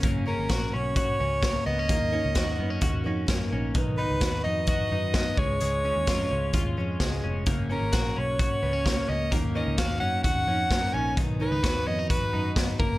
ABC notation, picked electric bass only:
X:1
M:4/4
L:1/16
Q:1/4=129
K:F#
V:1 name="Picked electric bass" clef=bass
F,,,3 G,,, A,,,2 B,,,4 C,,4 C,,2 | D,,3 C,, D,,2 F,,2 D,,2 E,,2 F,,2 A,,,2 | B,,,3 C,, D,,2 E,,4 F,,4 C,,2 | C,,3 D,, E,,2 C,,2 D,,2 E,,2 C,,2 E,,,2 |
F,,,3 G,,, A,,,2 B,,,4 C,,4 C,,2 | D,,3 C,, D,,2 F,,2 D,,2 E,,2 F,,2 A,,,2 | B,,,3 C,, D,,2 E,,4 F,,4 F,,,2 |]